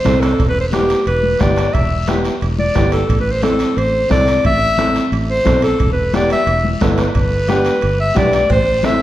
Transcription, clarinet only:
0.00 0.22 C5 medium
0.21 0.48 A4 medium
0.49 0.60 B4 medium
0.60 0.66 C5 medium
0.73 1.04 G4 medium
1.07 1.43 B4 medium
1.41 1.75 D5 medium
1.74 2.15 E5 medium
2.59 2.91 D5 medium
2.93 3.19 A4 medium
3.21 3.33 B4 medium
3.32 3.43 C5 medium
3.44 3.79 A4 medium
3.78 4.11 C5 medium
4.11 4.43 D5 medium
4.46 5.09 E5 loud
5.30 5.61 C5 loud
5.64 5.90 A4 medium
5.93 6.17 B4 medium
6.16 6.31 D5 medium
6.33 6.69 E5 loud
7.00 7.96 B4 medium
8.00 8.16 E5 loud
8.18 8.33 D5 medium
8.35 8.50 D5 medium
8.52 8.87 C5 medium
8.85 9.02 E5 loud

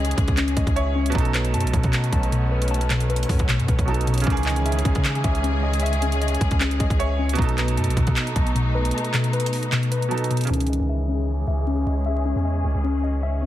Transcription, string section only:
0.00 1.12 C#3 medium
0.00 1.12 G#3 medium
0.00 7.34 C#4 medium
0.00 1.12 G#4 loud
1.15 4.24 A3 medium
1.15 4.24 B3 medium
4.27 7.35 C#3 medium
4.27 7.35 G#3 medium
4.27 7.35 G#4 loud
7.38 10.47 A3 medium
7.38 10.47 B3 medium
7.38 10.47 D#4 medium
10.50 13.46 C#3 medium
10.50 13.46 G#3 medium
10.50 13.46 C#4 medium
10.50 13.46 G#4 medium

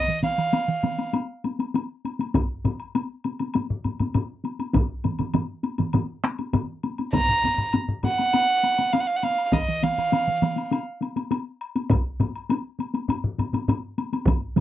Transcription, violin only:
0.00 0.21 D#5 medium
0.23 1.10 F5 medium
7.13 7.69 A#5 loud
8.06 8.94 F#5 loud
8.93 9.02 F5 medium
9.00 9.09 F#5 medium
9.07 9.17 F5 medium
9.16 9.25 F#5 medium
9.24 9.46 F5 medium
9.46 9.54 F5 medium
9.53 9.85 D#5 medium
9.83 10.72 F5 medium

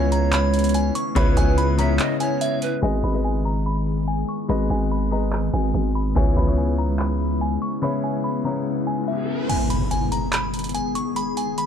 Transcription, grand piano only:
0.00 1.15 C#3 medium
0.00 1.16 B3 medium
0.00 1.16 E4 medium
0.00 1.17 C#5 loud
1.15 1.62 C#3 loud
1.15 1.62 B3 medium
1.15 1.63 E4 medium
1.15 1.63 C#5 loud
1.78 2.40 C#3 medium
1.78 2.40 B3 medium
1.78 2.41 E4 medium
1.78 2.41 C#5 medium
2.82 3.05 G#3 medium
2.82 3.06 G#4 medium
2.82 3.06 B4 medium
2.82 3.06 D#5 loud
3.13 3.75 G#3 medium
3.13 3.76 G#4 medium
3.13 3.76 B4 medium
3.13 3.76 D#5 medium
4.48 4.95 G#3 loud
4.48 4.96 G#4 medium
4.48 4.96 B4 medium
4.48 4.96 D#5 loud
5.11 5.73 G#3 medium
5.11 5.74 G#4 medium
5.11 5.74 B4 medium
5.11 5.74 D#5 medium
6.15 6.39 C#3 medium
6.15 6.39 B3 medium
6.15 6.39 E4 medium
6.15 6.40 C#5 loud
6.46 7.09 C#3 medium
6.46 7.09 B3 medium
6.46 7.09 E4 medium
6.46 7.10 C#5 medium
7.82 8.29 C#3 loud
7.82 8.29 B3 medium
7.82 8.29 E4 medium
7.82 8.30 C#5 loud
8.44 9.07 C#3 medium
8.44 9.07 B3 medium
8.44 9.07 E4 medium
8.44 9.08 C#5 medium

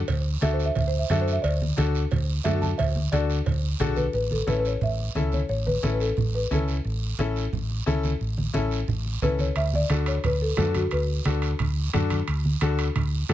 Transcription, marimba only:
0.43 0.53 E5 medium
0.53 0.65 C5 medium
0.66 0.76 E5 medium
0.78 0.88 E5 medium
0.87 0.98 C5 medium
0.99 1.10 E5 medium
1.11 1.22 E5 loud
1.21 1.32 C5 medium
1.33 1.44 E5 medium
1.42 1.76 D5 loud
2.44 2.61 E5 loud
2.62 2.78 A5 medium
2.78 3.11 E5 loud
3.12 3.78 D5 loud
3.80 3.96 G#4 medium
3.96 4.13 B4 medium
4.14 4.22 B4 medium
4.32 4.47 A4 medium
4.49 4.50 B4 medium
4.54 4.57 C#5 medium
4.59 4.66 B4 medium
4.67 4.82 C#5 medium
4.83 5.30 E5 loud
5.34 5.41 C#5 medium
5.49 5.67 C#5 loud
5.67 5.92 B4 medium
5.93 6.00 B4 medium
6.01 6.32 A4 medium
6.35 6.50 B4 medium
6.52 6.75 A4 medium
9.23 9.38 B4 loud
9.40 9.56 C#5 medium
9.57 9.64 E5 loud
9.75 10.09 D5 loud
10.08 10.23 C#5 loud
10.25 10.40 B4 medium
10.42 10.57 A4 medium
10.58 10.66 A4 medium
10.75 10.93 F#4 medium
10.92 12.07 B4 medium

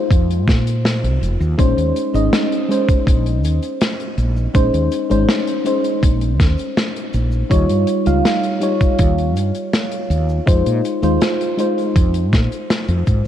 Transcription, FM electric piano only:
0.00 1.58 G#3 medium
0.00 1.59 D#4 medium
0.00 1.60 F4 medium
0.00 1.59 C5 medium
1.58 2.09 G#3 medium
1.58 2.10 C#4 medium
1.58 2.10 D#4 medium
1.58 2.10 C5 medium
2.14 2.65 G#3 medium
2.14 2.65 C#4 medium
2.14 2.66 D#4 medium
2.14 2.66 D#5 medium
2.68 4.50 G#3 medium
2.68 4.50 C#4 medium
2.68 4.51 D#4 medium
2.68 4.51 C5 medium
4.54 4.82 G#3 medium
4.54 4.82 C#4 medium
4.54 4.83 D#4 medium
4.54 4.83 C5 medium
5.10 5.61 G#3 medium
5.10 5.61 C#4 medium
5.10 5.62 D#4 medium
5.10 5.62 C5 medium
5.64 7.46 G#3 medium
5.64 7.46 C#4 medium
5.64 7.47 D#4 medium
5.64 7.47 C5 medium
7.50 8.02 G3 medium
7.50 8.02 D#4 medium
7.50 8.02 F4 medium
7.50 8.02 C#5 medium
8.05 8.57 G3 medium
8.05 8.57 D#4 medium
8.05 8.58 F4 medium
8.05 8.58 F5 medium
8.60 10.42 G3 medium
8.60 10.42 D#4 medium
8.60 10.43 F4 medium
8.60 10.43 C#5 medium
10.46 10.75 G#3 medium
10.46 10.75 D#4 medium
10.46 10.75 F4 medium
10.46 10.75 C5 medium
11.02 11.54 G#3 medium
11.02 11.54 D#4 medium
11.02 11.54 F4 medium
11.02 11.54 C5 medium
11.57 13.27 G#3 medium
11.57 13.27 D#4 medium
11.57 13.27 F4 medium
11.57 13.27 C5 medium

